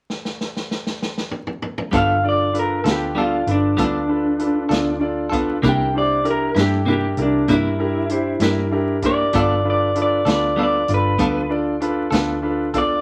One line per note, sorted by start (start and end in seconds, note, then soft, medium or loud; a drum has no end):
0.10 snare medium
0.25 snare medium
0.41 snare medium
0.57 snare medium
0.71 snare medium
0.87 snare medium
1.02 snare medium
1.18 snare medium
1.31 mid tom medium
1.47 mid tom medium
1.62 mid tom medium
1.78 mid tom loud
1.91 2.82 G1 medium
1.91 2.11 G3 medium
1.91 2.12 B3 medium
1.91 2.16 D4 medium
1.91 2.16 F4 soft
1.91 2.12 F4 medium
1.91 2.16 A4 medium
1.91 2.12 A4 medium
1.91 2.16 B4 medium
1.91 kick loud
1.91 closed hi-hat medium
1.96 2.25 F5 medium
2.23 2.47 D4 soft
2.23 2.47 F4 soft
2.23 2.47 A4 soft
2.23 2.47 D5 medium
2.29 2.56 D5 medium
2.53 2.77 D4 soft
2.53 2.77 F4 soft
2.53 2.78 A4 soft
2.53 2.78 B4 medium
2.53 closed hi-hat medium
2.59 2.87 A#4 medium
2.84 3.43 D2 medium
2.84 3.05 B3 soft
2.84 3.08 D4 soft
2.84 3.08 F4 soft
2.84 3.04 F4 soft
2.84 3.03 A4 medium
2.84 3.09 A4 soft
2.84 3.09 B4 medium
2.84 snare loud
2.84 closed hi-hat medium
2.91 3.18 G4 medium
3.14 3.34 G3 medium
3.14 3.35 B3 medium
3.14 3.39 D4 soft
3.14 3.39 F4 soft
3.14 3.36 F4 medium
3.14 3.39 A4 soft
3.14 3.36 A4 medium
3.14 3.40 D5 soft
3.22 3.49 F4 medium
3.46 3.75 G1 medium
3.46 3.70 D4 medium
3.46 3.70 F4 soft
3.46 3.70 A4 soft
3.46 3.71 B4 medium
3.46 closed hi-hat medium
3.51 3.79 D4 medium
3.76 4.67 D2 medium
3.76 3.96 G3 medium
3.76 3.97 B3 medium
3.76 4.01 D4 medium
3.76 4.01 F4 soft
3.76 3.97 F4 medium
3.76 4.01 A4 soft
3.76 3.97 A4 medium
3.76 4.01 B4 medium
3.76 kick medium
3.76 closed hi-hat medium
3.83 5.01 D4 medium
4.08 4.32 D4 soft
4.08 4.32 F4 soft
4.08 4.32 A4 soft
4.08 4.32 B4 medium
4.39 4.63 D4 soft
4.39 4.63 F4 soft
4.39 4.63 A4 soft
4.39 4.63 B4 medium
4.39 closed hi-hat medium
4.68 5.59 D2 medium
4.68 4.90 B3 soft
4.68 4.93 D4 medium
4.68 4.93 F4 medium
4.68 4.90 F4 medium
4.68 4.89 A4 medium
4.68 4.93 A4 soft
4.68 4.94 D5 medium
4.68 closed hi-hat medium
4.73 snare loud
5.00 5.24 D4 medium
5.00 5.24 F4 medium
5.00 5.24 A4 soft
5.00 5.25 D5 medium
5.29 5.52 B3 soft
5.29 5.55 D4 medium
5.29 5.55 F4 medium
5.29 5.51 F4 soft
5.29 5.50 A4 soft
5.29 5.56 A4 medium
5.29 5.56 B4 medium
5.29 kick medium
5.29 closed hi-hat medium
5.62 6.52 C2 medium
5.62 5.81 C3 medium
5.62 5.82 A#3 medium
5.62 5.86 D4 medium
5.62 5.82 D4 medium
5.62 5.86 E4 medium
5.62 5.83 E4 medium
5.62 5.87 G4 medium
5.62 5.87 A#4 medium
5.62 kick medium
5.62 closed hi-hat medium
5.69 5.96 G5 medium
5.93 6.17 D4 soft
5.93 6.18 E4 soft
5.93 6.18 G4 soft
5.93 6.18 C5 soft
5.98 6.26 D5 medium
6.24 6.48 D4 medium
6.24 6.48 E4 soft
6.24 6.48 G4 soft
6.24 6.48 A#4 medium
6.24 closed hi-hat soft
6.31 6.58 A#4 medium
6.55 7.14 G2 medium
6.55 6.76 A#3 soft
6.55 6.79 D4 medium
6.55 6.75 D4 soft
6.55 6.74 E4 medium
6.55 6.79 E4 soft
6.55 6.80 G4 soft
6.55 6.80 A4 medium
6.55 snare medium
6.55 closed hi-hat medium
6.61 6.88 G4 medium
6.85 7.05 C3 medium
6.85 7.05 A#3 medium
6.85 7.10 D4 soft
6.85 7.06 D4 medium
6.85 7.10 E4 soft
6.85 7.06 E4 medium
6.85 7.10 G4 soft
6.85 7.11 A#4 soft
6.92 7.20 G4 medium
7.17 7.46 C2 medium
7.17 7.40 D4 soft
7.17 7.41 E4 soft
7.17 7.41 G4 soft
7.17 7.41 A#4 medium
7.17 closed hi-hat medium
7.22 7.50 D4 medium
7.47 8.37 G2 medium
7.47 7.67 C3 medium
7.47 7.68 A#3 medium
7.47 7.71 D4 medium
7.47 7.68 D4 medium
7.47 7.72 E4 soft
7.47 7.68 E4 medium
7.47 7.72 G4 soft
7.47 7.72 A#4 medium
7.47 kick medium
7.47 closed hi-hat medium
7.53 8.71 E4 medium
7.79 8.02 D4 medium
7.79 8.02 E4 soft
7.79 8.03 G4 medium
7.79 8.03 A#4 medium
8.09 8.33 D4 soft
8.09 8.34 E4 soft
8.09 8.34 G4 soft
8.09 8.34 C5 medium
8.09 closed hi-hat medium
8.40 9.29 G2 medium
8.40 8.64 D4 medium
8.40 8.61 D4 soft
8.40 8.64 E4 medium
8.40 8.60 E4 medium
8.40 8.64 G4 medium
8.40 8.65 A#4 medium
8.40 snare loud
8.40 closed hi-hat medium
8.45 8.62 A#3 soft
8.71 8.95 D4 medium
8.71 8.95 E4 soft
8.71 8.95 G4 medium
8.71 8.96 A#4 medium
9.02 9.23 A#3 soft
9.02 9.26 D4 medium
9.02 9.23 D4 soft
9.02 9.26 E4 soft
9.02 9.22 E4 soft
9.02 9.27 G4 soft
9.02 9.27 A#4 medium
9.02 9.35 D5 loud
9.02 kick medium
9.02 closed hi-hat medium
9.33 10.22 G1 medium
9.33 9.53 G3 medium
9.33 9.53 B3 medium
9.33 9.57 D4 medium
9.33 9.57 F4 soft
9.33 9.53 F4 medium
9.33 9.57 A4 soft
9.33 9.53 A4 medium
9.33 9.58 B4 medium
9.33 kick medium
9.33 closed hi-hat medium
9.39 9.67 D5 medium
9.64 9.88 D4 soft
9.64 9.88 F4 soft
9.64 9.88 A4 soft
9.64 9.88 B4 medium
9.70 9.98 D5 medium
9.95 10.19 D4 medium
9.95 10.19 F4 soft
9.95 10.19 A4 soft
9.95 10.20 B4 medium
9.95 closed hi-hat medium
10.02 10.29 D5 medium
10.25 10.84 D2 medium
10.25 10.46 B3 soft
10.25 10.50 D4 medium
10.25 10.50 F4 soft
10.25 10.45 F4 soft
10.25 10.45 A4 soft
10.25 10.50 A4 soft
10.25 10.50 B4 medium
10.25 snare loud
10.25 closed hi-hat medium
10.32 10.59 D5 medium
10.56 10.76 G3 medium
10.56 10.76 B3 medium
10.56 10.80 D4 soft
10.56 10.80 F4 soft
10.56 10.77 F4 medium
10.56 10.81 A4 soft
10.56 10.77 A4 medium
10.56 10.81 B4 medium
10.63 10.91 D5 medium
10.88 11.17 G1 medium
10.88 11.12 D4 soft
10.88 11.12 F4 soft
10.88 11.12 A4 soft
10.88 11.12 D5 medium
10.88 closed hi-hat medium
10.94 11.52 B4 medium
11.18 12.08 D2 medium
11.18 11.38 G3 medium
11.18 11.38 B3 medium
11.18 11.42 D4 soft
11.18 11.42 F4 soft
11.18 11.39 F4 medium
11.18 11.43 A4 soft
11.18 11.39 A4 medium
11.18 11.43 B4 medium
11.18 kick medium
11.18 closed hi-hat medium
11.49 11.73 D4 medium
11.49 11.73 F4 soft
11.49 11.74 A4 soft
11.49 11.74 D5 medium
11.80 12.04 D4 medium
11.80 12.05 F4 medium
11.80 12.05 A4 medium
11.80 12.05 B4 medium
11.80 closed hi-hat medium
12.11 13.01 D2 medium
12.11 12.32 B3 soft
12.11 12.36 D4 medium
12.11 12.36 F4 medium
12.11 12.31 F4 medium
12.11 12.30 A4 medium
12.11 12.36 A4 medium
12.11 12.36 B4 medium
12.11 snare loud
12.11 closed hi-hat medium
12.42 12.66 D4 medium
12.42 12.66 F4 medium
12.42 12.67 A4 medium
12.42 12.67 B4 medium
12.74 12.94 B3 soft
12.74 12.97 D4 soft
12.74 12.98 F4 soft
12.74 12.93 F4 soft
12.74 12.93 A4 soft
12.74 12.98 A4 soft
12.74 12.98 D5 medium
12.74 kick medium
12.74 closed hi-hat medium
12.78 13.01 D5 medium